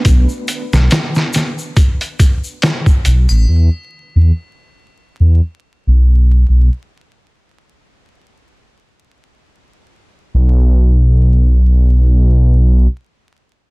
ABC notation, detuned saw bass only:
X:1
M:4/4
L:1/16
Q:"Swing 16ths" 1/4=70
K:Em
V:1 name="Detuned saw bass" clef=bass
B,,, z2 B,,, z8 z2 B,,, A,,, | E,, z2 E,, z4 E,, z2 B,,,3 B,,, z | z16 | B,,,12 z4 |]